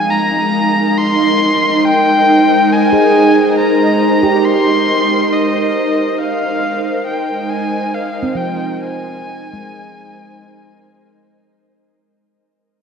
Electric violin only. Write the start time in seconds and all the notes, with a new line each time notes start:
Already playing: G#5
0.11 A#5
0.98 C6
1.85 G5
2.72 G#5
3.59 A#5
4.45 C6
5.33 D#5
6.19 F5
7.07 G5
7.50 G#5
7.94 F5
8.37 G5
8.81 G#5